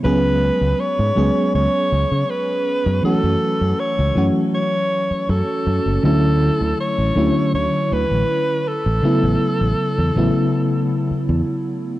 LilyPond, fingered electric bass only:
\new Staff \with { instrumentName = "Fingered electric bass" } { \clef bass \time 4/4 \key a \major \tempo 4 = 80 cis,8 r16 cis,16 r16 gis,16 cis,16 r16 cis,16 r16 cis,16 cis16 r8. fis,16 | r16 fis,16 r16 fis,16 r16 cis,16 fis,16 r4 r16 fis,16 r16 fis,16 fis,,16 | d,8 r16 d,16 r16 a,,16 d,16 r16 d,16 r16 d,16 a,,16 r8. a,,16 | r16 a,,16 r16 a,,16 r16 e,16 a,,16 r4 r16 e,16 r8. | }